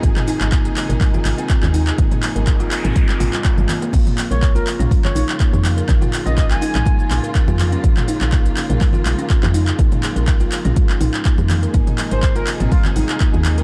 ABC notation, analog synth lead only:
X:1
M:4/4
L:1/16
Q:"Swing 16ths" 1/4=123
K:Bbm
V:1 name="Analog synth lead"
z16 | z16 | z3 d2 B z3 d d z4 z | z3 e e a6 z4 z |
z16 | z16 | z3 c2 B z2 F z6 z |]